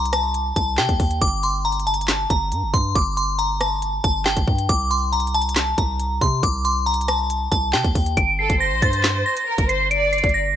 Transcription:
0.00 0.52 C2 loud
0.06 closed hi-hat medium
0.13 0.54 A5 medium
0.13 cross-stick loud
0.13 closed hi-hat medium
0.34 closed hi-hat medium
0.56 0.79 C2 loud
0.56 0.75 A5 medium
0.56 kick loud
0.56 closed hi-hat medium
0.78 0.88 C3 loud
0.78 1.19 G5 medium
0.78 snare loud
0.78 clap medium
0.89 0.99 D#2 loud
0.89 kick loud
0.89 closed hi-hat soft
1.00 1.21 D#2 loud
1.00 kick loud
1.00 closed hi-hat medium
1.00 open hi-hat medium
1.11 closed hi-hat medium
1.21 2.26 G1 loud
1.21 1.41 D6 loud
1.21 kick loud
1.21 closed hi-hat medium
1.43 1.62 C6 medium
1.43 closed hi-hat medium
1.65 1.84 A#5 medium
1.65 closed hi-hat soft
1.72 closed hi-hat medium
1.80 closed hi-hat medium
1.87 2.28 A5 medium
1.87 closed hi-hat medium
1.94 closed hi-hat medium
2.01 closed hi-hat medium
2.08 snare loud
2.08 clap medium
2.08 closed hi-hat medium
2.30 2.53 G1 loud
2.30 2.71 A#5 medium
2.30 kick loud
2.30 closed hi-hat medium
2.52 2.64 G2 loud
2.52 closed hi-hat medium
2.63 2.73 G1 loud
2.74 2.95 G2 loud
2.74 2.93 C6 medium
2.74 kick loud
2.95 4.00 G1 loud
2.95 3.14 D6 medium
2.95 kick loud
2.95 closed hi-hat medium
3.17 3.36 C6 medium
3.17 closed hi-hat medium
3.39 3.58 A#5 medium
3.39 closed hi-hat medium
3.61 4.02 A5 medium
3.61 cross-stick loud
3.61 closed hi-hat medium
3.82 closed hi-hat medium
4.04 4.35 G1 loud
4.04 4.23 A5 medium
4.04 kick loud
4.04 closed hi-hat medium
4.26 4.67 G5 medium
4.26 snare loud
4.26 clap medium
4.37 4.47 G1 loud
4.37 kick loud
4.37 closed hi-hat medium
4.48 4.68 G2 loud
4.48 kick loud
4.59 closed hi-hat medium
4.69 5.74 C2 loud
4.69 4.88 D6 loud
4.69 kick loud
4.69 closed hi-hat medium
4.91 5.10 C6 medium
4.91 closed hi-hat medium
5.13 5.32 A#5 medium
5.13 closed hi-hat soft
5.20 closed hi-hat medium
5.27 closed hi-hat medium
5.34 5.75 A5 medium
5.34 closed hi-hat medium
5.42 closed hi-hat medium
5.49 closed hi-hat medium
5.56 snare loud
5.56 clap medium
5.56 closed hi-hat medium
5.78 6.20 C2 loud
5.78 6.19 A#5 medium
5.78 kick loud
5.78 closed hi-hat medium
6.00 closed hi-hat medium
6.21 6.42 C3 loud
6.21 6.41 C6 medium
6.21 kick loud
6.43 7.48 C2 loud
6.43 6.62 D6 loud
6.43 kick loud
6.43 closed hi-hat medium
6.65 6.84 C6 medium
6.65 closed hi-hat medium
6.86 7.06 A#5 medium
6.86 closed hi-hat soft
6.94 closed hi-hat medium
7.01 closed hi-hat medium
7.08 7.49 A5 medium
7.08 cross-stick loud
7.08 closed hi-hat medium
7.30 closed hi-hat medium
7.51 7.75 C2 loud
7.51 7.71 A5 medium
7.51 kick loud
7.51 closed hi-hat medium
7.73 7.84 C3 medium
7.73 8.14 G5 medium
7.73 snare loud
7.73 clap medium
7.84 7.95 D#2 loud
7.84 kick loud
7.84 closed hi-hat soft
7.95 8.16 D#2 loud
7.95 kick medium
7.95 closed hi-hat medium
7.95 open hi-hat medium
8.06 closed hi-hat medium
8.17 8.48 G1 loud
8.17 8.36 D7 loud
8.17 kick loud
8.17 closed hi-hat medium
8.39 8.60 A4 medium
8.39 8.58 C7 medium
8.50 8.73 G1 loud
8.50 kick medium
8.50 closed hi-hat medium
8.60 9.43 C5 medium
8.60 8.80 A#6 medium
8.71 8.82 A#1 loud
8.82 9.24 G2 loud
8.82 9.23 A6 medium
8.82 kick medium
8.82 closed hi-hat medium
8.93 closed hi-hat medium
9.04 snare loud
9.04 clap medium
9.26 9.67 A#6 medium
9.37 closed hi-hat medium
9.47 9.68 A#4 medium
9.58 10.21 G1 loud
9.58 kick loud
9.58 closed hi-hat medium
9.69 9.90 C5 medium
9.69 9.88 C7 medium
9.69 closed hi-hat medium
9.91 10.32 D5 loud
9.91 10.10 D7 loud
9.91 closed hi-hat medium
10.13 10.32 C7 medium
10.13 closed hi-hat medium
10.18 closed hi-hat medium
10.24 10.55 G1 loud
10.24 kick medium
10.24 closed hi-hat soft
10.29 closed hi-hat soft
10.34 10.53 A#6 medium

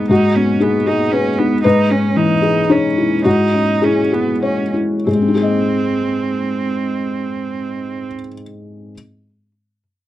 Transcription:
0.00 0.09 G#2 soft
0.00 0.12 B3 soft
0.00 0.26 D#4 soft
0.00 0.12 G#4 soft
0.00 0.13 B4 medium
0.09 1.60 G#2 soft
0.09 0.37 D#4 medium
0.09 0.58 F#4 medium
0.35 0.76 B3 soft
0.35 0.64 C#4 soft
0.60 0.88 B3 soft
0.60 1.02 D#4 soft
0.60 0.86 G#4 soft
0.87 1.13 D#4 soft
0.87 1.28 G#4 soft
1.12 1.40 C#4 soft
1.12 1.54 B4 soft
1.38 1.63 B3 soft
1.38 1.65 D#4 soft
1.63 3.22 G#2 medium
1.63 1.92 D#4 medium
1.63 2.39 B4 medium
1.90 2.32 C#4 soft
1.90 2.18 C#4 soft
2.16 2.59 E3 soft
2.16 2.73 D#4 medium
2.42 2.86 G#4 soft
2.70 3.25 C#4 soft
2.70 3.21 D#4 medium
2.70 3.14 C#5 soft
2.98 3.42 E4 soft
3.24 5.04 G#2 soft
3.24 3.86 D#4 medium
3.24 3.78 F#4 medium
3.54 4.00 C#4 soft
3.82 4.15 C#4 soft
3.82 4.31 E4 soft
3.82 4.10 G#4 soft
4.12 4.42 B3 soft
4.12 4.62 G#4 soft
4.43 4.74 C#4 soft
4.43 4.94 C#5 soft
4.74 5.07 E4 soft
5.07 8.05 G#2 soft
5.07 8.07 C4 soft
5.07 5.34 G#4 soft
5.15 8.13 G#3 soft
5.22 8.20 C4 soft
5.28 8.27 D#4 soft
5.35 8.33 G#4 soft
5.42 8.40 D#5 soft

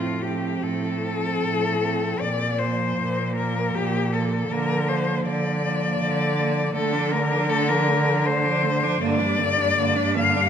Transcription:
0.00 0.53 A2 medium
0.00 0.22 F3 soft
0.00 0.22 C4 soft
0.00 0.23 F4 medium
0.22 1.01 F3 soft
0.22 1.01 C4 soft
0.22 0.65 G4 medium
0.62 1.32 A2 soft
0.62 2.21 A4 medium
1.02 1.79 F3 soft
1.02 1.79 C4 soft
1.42 2.11 A2 medium
1.81 2.19 F3 soft
1.81 2.19 C4 soft
2.20 2.88 A#2 medium
2.20 2.60 D5 medium
2.58 3.35 F3 soft
2.58 3.35 A#3 soft
2.58 3.36 C5 medium
2.97 3.66 A#2 medium
3.35 4.10 F3 soft
3.35 4.10 A#3 soft
3.35 3.76 A#4 medium
3.75 4.41 A#2 medium
3.75 4.15 G4 medium
4.11 4.48 F3 soft
4.11 4.47 A#3 soft
4.11 4.54 A4 medium
4.48 5.15 D3 medium
4.48 4.86 F3 medium
4.48 4.85 A#3 soft
4.52 4.90 A#4 medium
4.87 5.61 F3 medium
4.87 5.61 A#3 soft
4.87 5.26 C5 medium
5.25 5.91 D3 medium
5.25 6.73 D5 medium
5.62 6.36 F3 medium
5.62 6.36 A#3 medium
6.00 6.66 D3 medium
6.37 6.74 F3 soft
6.37 6.73 A#3 soft
6.74 8.98 D3 medium
6.74 6.96 D3 medium
6.74 6.94 A3 medium
6.74 7.13 A4 medium
6.93 7.15 F3 soft
6.93 7.14 D4 medium
7.11 7.33 D3 medium
7.11 7.33 A3 soft
7.11 7.51 A#4 medium
7.32 7.49 F3 medium
7.32 7.49 D4 medium
7.49 7.70 D3 medium
7.49 7.70 A3 medium
7.49 7.70 A4 loud
7.69 7.89 F3 medium
7.69 7.89 D4 soft
7.69 8.28 A#4 medium
7.88 8.08 D3 medium
7.88 8.08 A3 medium
8.06 8.25 F3 soft
8.06 8.25 D4 medium
8.26 8.46 D3 medium
8.26 8.45 A3 soft
8.26 9.03 C5 medium
8.44 8.65 F3 soft
8.44 8.65 D4 medium
8.63 8.84 D3 medium
8.63 8.84 A3 medium
8.82 9.01 F3 medium
8.82 9.01 D4 medium
9.01 10.49 G2 medium
9.01 9.22 D3 medium
9.01 9.21 A#3 medium
9.01 10.16 D5 loud
9.19 9.41 G3 medium
9.19 9.40 D4 medium
9.39 9.61 D3 medium
9.39 9.59 A#3 soft
9.57 9.77 G3 medium
9.57 9.77 D4 medium
9.77 9.99 D3 medium
9.77 9.97 A#3 medium
9.95 10.18 G3 medium
9.95 10.18 D4 medium
10.16 10.38 D3 medium
10.16 10.37 A#3 medium
10.16 10.49 F5 loud
10.36 10.49 G3 medium
10.36 10.49 D4 medium

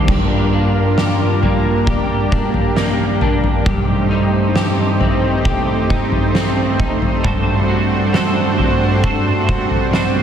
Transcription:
0.00 0.17 D#3 medium
0.00 0.10 G3 medium
0.00 1.42 A#3 medium
0.00 0.52 D4 medium
0.08 3.64 G2 medium
0.08 3.63 G3 medium
0.08 3.63 A#3 medium
0.08 3.63 D4 medium
0.08 1.86 F4 medium
0.08 0.98 G4 medium
0.08 3.63 A#4 medium
0.08 kick loud
0.08 floor tom loud
0.08 crash medium
0.53 2.31 D4 soft
0.98 1.86 G4 medium
0.98 snare medium
1.43 2.75 A#3 medium
1.43 floor tom medium
1.87 3.66 G4 medium
1.87 3.65 G4 medium
1.87 kick medium
1.87 floor tom medium
2.32 3.20 D4 soft
2.32 kick medium
2.54 floor tom medium
2.76 3.75 A#3 medium
2.76 snare medium
3.21 3.75 D4 medium
3.21 floor tom medium
3.44 floor tom medium
3.66 7.23 G2 medium
3.66 10.23 G2 medium
3.66 10.23 A3 medium
3.66 10.23 C4 medium
3.66 7.21 D#4 medium
3.66 4.54 G4 medium
3.66 7.21 G4 medium
3.66 10.23 C5 medium
3.66 kick medium
3.66 floor tom loud
4.11 5.89 D#4 medium
4.56 5.44 G4 medium
4.56 snare loud
5.00 6.34 C4 medium
5.00 floor tom medium
5.45 7.24 G4 medium
5.45 kick medium
5.45 floor tom medium
5.90 6.78 D#4 medium
5.90 kick medium
6.12 floor tom medium
6.35 7.72 C4 medium
6.35 snare medium
6.79 7.33 D#4 medium
6.79 kick medium
6.79 floor tom medium
7.02 floor tom medium
7.24 10.23 G2 medium
7.24 7.69 G3 medium
7.24 7.70 A3 medium
7.24 10.23 D4 medium
7.24 7.70 D4 medium
7.24 10.23 F#4 medium
7.24 7.70 F#4 medium
7.24 8.13 A4 medium
7.24 kick loud
7.24 floor tom loud
7.28 7.67 C5 medium
7.68 9.47 F#4 medium
7.68 8.15 F#4 soft
7.68 8.14 C5 soft
7.74 8.14 D4 soft
8.13 8.58 G3 medium
8.13 8.59 A3 medium
8.13 8.60 D4 medium
8.13 8.60 F#4 medium
8.13 9.02 A4 medium
8.13 8.57 C5 medium
8.13 snare loud
8.58 9.93 C4 medium
8.58 9.04 F#4 soft
8.58 9.03 C5 medium
8.58 floor tom medium
8.63 9.03 D4 soft
9.02 9.47 A3 medium
9.02 9.49 D4 medium
9.02 9.49 F#4 medium
9.02 10.23 A4 medium
9.02 kick medium
9.07 9.45 C5 medium
9.47 10.23 F#4 medium
9.47 9.94 F#4 soft
9.47 9.92 C5 medium
9.47 kick medium
9.53 9.93 D4 soft
9.71 floor tom medium
9.92 10.23 G3 medium
9.92 10.23 A3 medium
9.92 10.23 C4 medium
9.92 10.23 D4 medium
9.92 10.23 F#4 medium
9.92 10.23 C5 medium
9.92 snare medium

